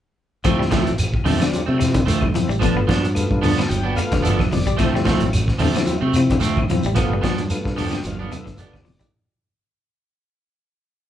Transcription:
0.44 fingered electric bass D2, tonewheel organ F3 C4 E4, clean electric guitar F3 A3 C4, kick, closed hi-hat, claves, shekere
0.59 clean electric guitar G3, snare
0.71 clean electric guitar F3 A3 C4, kick, snare, closed hi-hat, high conga
0.87 fingered electric bass A1, closed hi-hat, shekere
0.98 closed hi-hat, claves, shekere
1.14 kick
1.25 fingered electric bass F2, clean electric guitar D3 F3 A3 C4, open hi-hat, high conga, low conga, shekere
1.40 clean electric guitar D3, tonewheel organ F3 C4 D4, snare, closed hi-hat, claves, shekere
1.53 muted fingered electric bass stroke, closed hi-hat, high conga, shekere
1.66 fingered electric bass C3, clean electric guitar A3 C4
1.80 clean electric guitar C3, tonewheel organ F3 C4 E4, snare, closed hi-hat, claves, shekere
1.94 clean electric guitar D3, kick, closed hi-hat, high conga, shekere
2.06 fingered electric bass D2, clean electric guitar F3 A3 C4, closed hi-hat, shekere
2.21 tonewheel organ C4 E4, kick, high conga, claves
2.34 tonewheel organ F3 C4 E4, clean electric guitar F3, closed hi-hat, low conga, shekere
2.49 fingered electric bass A1, clean electric guitar G3, shekere
2.59 fingered electric bass G1, clean electric guitar F3 D4, tonewheel organ A3 B3 F4, muted clean electric guitar stroke, kick, closed hi-hat, claves, shekere
2.64 snare
2.77 clean electric guitar B3
2.87 fingered electric bass G2, clean electric guitar F3 B3 D4, kick, closed hi-hat, high conga
2.91 snare
3.04 closed hi-hat, shekere
3.15 tonewheel organ A3 B3 F4, closed hi-hat, claves, shekere
3.31 fingered electric bass G2, kick
3.41 clean electric guitar D3 F3 B3 D4, tonewheel organ A5, open hi-hat, high conga, low conga, shekere
3.58 clean electric guitar D3, snare, closed hi-hat, claves, shekere
3.69 fingered electric bass G1, tonewheel organ G5, closed hi-hat, high conga, shekere
3.83 clean electric guitar B3 D4
3.96 tonewheel organ A3 B3 F4 F5, muted clean electric guitar stroke, closed hi-hat, claves, shekere
4.12 fingered electric bass G1, clean electric guitar D3, kick, snare, closed hi-hat, high conga, shekere
4.22 clean electric guitar F3 B3 D4, tonewheel organ E5, closed hi-hat, shekere
4.39 kick, snare, high conga, claves
4.52 fingered electric bass F1, clean electric guitar F3, tonewheel organ D5, open hi-hat, low conga, shekere
4.67 clean electric guitar G3, kick, closed hi-hat, shekere
4.77 fingered electric bass D2, clean electric guitar F3 A3 C4, tonewheel organ F3 C4 E4, kick, snare, closed hi-hat, claves, shekere
4.95 clean electric guitar G3, snare
5.05 clean electric guitar F3 A3 C4, muted clean electric guitar stroke, kick, snare, closed hi-hat, high conga
5.20 fingered electric bass A1, closed hi-hat, high conga, shekere
5.33 closed hi-hat, claves, shekere
5.48 kick, snare
5.59 fingered electric bass F2, clean electric guitar D3 F3 A3 C4, open hi-hat, high conga, low conga, shekere
5.74 clean electric guitar D3, tonewheel organ F3 C4 E4, snare, closed hi-hat, claves, shekere
5.86 muted fingered electric bass stroke, closed hi-hat, high conga, shekere
6.01 fingered electric bass C3, clean electric guitar A3 C4
6.13 clean electric guitar C3, tonewheel organ F3 C4 E4, closed hi-hat, claves, shekere
6.28 clean electric guitar D3, kick, closed hi-hat, high conga, shekere
6.40 fingered electric bass D2, clean electric guitar F3 A3 C4, closed hi-hat, shekere
6.57 tonewheel organ C4 E4, kick, high conga, claves
6.69 tonewheel organ F3 C4 E4, clean electric guitar F3, closed hi-hat, high conga, low conga, shekere
6.83 fingered electric bass A1, clean electric guitar G3, shekere
6.95 fingered electric bass G1, clean electric guitar F3 B3, tonewheel organ A3 B3 F4, muted clean electric guitar stroke, kick, snare, closed hi-hat, claves, shekere
7.13 clean electric guitar G3
7.21 fingered electric bass G2, clean electric guitar F3 B3 D4, kick, snare, closed hi-hat, high conga
7.38 closed hi-hat, high conga, shekere
7.49 tonewheel organ A3 B3 F4, closed hi-hat, claves, shekere
7.65 fingered electric bass G2, kick, snare
7.77 clean electric guitar D3 F3 B3 D4, tonewheel organ A5, open hi-hat, shekere
7.81 high conga, low conga
7.86 tonewheel organ G5
7.91 clean electric guitar D3, snare, closed hi-hat, claves, shekere
8.04 fingered electric bass G1, tonewheel organ F5, closed hi-hat, high conga, shekere
8.19 clean electric guitar B3 D4, high conga
8.31 clean electric guitar C3, tonewheel organ A3 B3 F4 E5, closed hi-hat, high conga, claves, shekere
8.46 fingered electric bass G1, clean electric guitar D3, kick, snare, closed hi-hat, shekere
8.58 clean electric guitar B3 D4, tonewheel organ D5, muted clean electric guitar stroke, closed hi-hat, low conga, shekere
8.73 kick, snare, low conga, claves
8.85 fingered electric bass F1, clean electric guitar F3, open hi-hat, low conga, shekere
8.95 tonewheel organ D5
9.00 clean electric guitar G3, kick, closed hi-hat, low conga, shekere

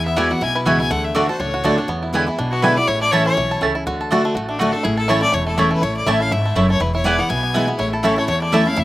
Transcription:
Already playing: upright bass E2, steel-string acoustic guitar E2, five-string banjo E4
0.06 five-string banjo B3, fiddle E5
0.16 steel-string acoustic guitar E3 G#3 B3 F#4, mandolin B3 F#4 E5 G#5, five-string banjo E4, fiddle D5
0.30 steel-string acoustic guitar B3 F#4, five-string banjo E4, fiddle F#5
0.41 upright bass B1, steel-string acoustic guitar B2, five-string banjo E4, fiddle G#5
0.55 five-string banjo E4, fiddle B4
0.65 upright bass C#2, steel-string acoustic guitar E3 G#3 B3 F#4, mandolin B3 F#4 E5 G#5, five-string banjo E4, fiddle E5
0.79 steel-string acoustic guitar B3 F#4, five-string banjo E4, fiddle G#5
0.91 upright bass D2, steel-string acoustic guitar D3, five-string banjo A3, fiddle F#5
1.05 fiddle E5
1.15 steel-string acoustic guitar D3 A3 D4 F#4, mandolin A3 F#4 D5 A5, five-string banjo F#4, fiddle D5
1.28 steel-string acoustic guitar D4 F#4, five-string banjo A4, fiddle C5
1.40 upright bass C#2, steel-string acoustic guitar A2, five-string banjo D4, fiddle C#5
1.54 five-string banjo F#4
1.64 upright bass D2, steel-string acoustic guitar D3 A3 D4 F#4, mandolin A3 F#4 D5 A5, five-string banjo A3
1.78 five-string banjo D4, steel-string acoustic guitar D4 F#4
1.88 steel-string acoustic guitar E2, upright bass E2, five-string banjo B3
2.03 five-string banjo E4
2.13 steel-string acoustic guitar D3 G#3 B3 E4, five-string banjo E3, mandolin B3 E4 D5 G#5
2.27 steel-string acoustic guitar B3 E4, five-string banjo E4
2.38 upright bass B1, steel-string acoustic guitar B2, five-string banjo D4
2.51 five-string banjo B3, fiddle F#4
2.62 steel-string acoustic guitar D3 G#3 B3 E4, mandolin B3 E4 D5 G#5, five-string banjo E4, fiddle B4
2.77 steel-string acoustic guitar B3 E4, five-string banjo E4, fiddle D5
2.88 upright bass A1, steel-string acoustic guitar A2, five-string banjo E4, fiddle C#5
3.01 five-string banjo A3, fiddle D5
3.11 steel-string acoustic guitar E3 A3 C#4 E4, mandolin A3 E4 C#5 A5, five-string banjo A4, fiddle C#5
3.26 five-string banjo C#4, fiddle C#5
3.37 upright bass B1, steel-string acoustic guitar B2, five-string banjo E4
3.51 five-string banjo A4
3.61 upright bass C#2, steel-string acoustic guitar C#3, mandolin A3 E4 C#5 A5, five-string banjo C#4
3.75 five-string banjo E4
3.86 upright bass D2, steel-string acoustic guitar D3, five-string banjo F#4
4.01 five-string banjo A4
4.11 steel-string acoustic guitar D3 A3 D4 F#4, mandolin A3 F#4 D5 A5, five-string banjo F#4
4.25 five-string banjo A3
4.35 upright bass A1, steel-string acoustic guitar A2, five-string banjo F#4
4.49 five-string banjo A3, fiddle D4
4.59 steel-string acoustic guitar D3 A3 D4 F#4, mandolin A3 F#4 D5 A5, five-string banjo F#4, fiddle F#4
4.73 five-string banjo A3, steel-string acoustic guitar D4 F#4, fiddle A4
4.83 upright bass A1, steel-string acoustic guitar A2, five-string banjo E4, fiddle G#4
4.97 five-string banjo A4, fiddle A4
5.08 steel-string acoustic guitar E3 A3 C#4 E4, mandolin A3 E4 C#5 A5, five-string banjo E4, fiddle C#5
5.21 five-string banjo A3, steel-string acoustic guitar C#4 E4, fiddle D5
5.32 upright bass E1, steel-string acoustic guitar E2, five-string banjo E4, fiddle C#5
5.47 five-string banjo A3, fiddle A4
5.57 steel-string acoustic guitar E3 A3 C#4 E4, mandolin A3 E4 C#5 A5, five-string banjo E4, fiddle G#4
5.71 five-string banjo A3, fiddle B4
5.82 upright bass A1, steel-string acoustic guitar A2, five-string banjo E4, fiddle C#5
5.97 fiddle D5
6.06 upright bass A1, steel-string acoustic guitar E3 A3 C#4 E4, mandolin A3 E4 C#5 A5, five-string banjo E4, fiddle E5
6.20 five-string banjo A3, steel-string acoustic guitar C#4 E4, fiddle F5
6.31 upright bass G#1, steel-string acoustic guitar G#2, five-string banjo E4, fiddle E5
6.45 five-string banjo A3
6.55 upright bass F#1, steel-string acoustic guitar F#2, mandolin A3 E4 C#5 A5, five-string banjo E4
6.70 five-string banjo A3, fiddle C#5
6.80 upright bass E1, steel-string acoustic guitar E2, five-string banjo E4, fiddle B4
6.95 five-string banjo E4, fiddle C#5
7.04 steel-string acoustic guitar E3 G#3 B3 E4, mandolin B3 E4 B4 G#5, five-string banjo E4, fiddle D5
7.18 five-string banjo B3, steel-string acoustic guitar B3 E4, fiddle F#5
7.29 upright bass B1, steel-string acoustic guitar B2, five-string banjo E4, fiddle G#5
7.43 five-string banjo B3
7.54 steel-string acoustic guitar E3 G#3 B3 E4, mandolin B3 E4 B4 G#5, five-string banjo E4
7.67 five-string banjo B3, steel-string acoustic guitar B3 E4
7.78 upright bass A1, steel-string acoustic guitar A2, five-string banjo E4, fiddle C#5
7.92 fiddle E4, five-string banjo A4
8.03 steel-string acoustic guitar E3 A3 C#4 E4, mandolin A3 E4 C#5 A5, five-string banjo E4, fiddle A4
8.16 five-string banjo A3, steel-string acoustic guitar C#4 E4, fiddle C#5
8.28 upright bass E2, steel-string acoustic guitar E2, five-string banjo E4, fiddle C#5
8.42 five-string banjo A3, fiddle D5
8.52 steel-string acoustic guitar E3 A3 C#4 E4, mandolin A3 E4 C#5 A5, five-string banjo E4, fiddle E5
8.66 five-string banjo A3, steel-string acoustic guitar C#4 E4, fiddle F5
8.76 upright bass E1, steel-string acoustic guitar E2, five-string banjo E4, fiddle E5

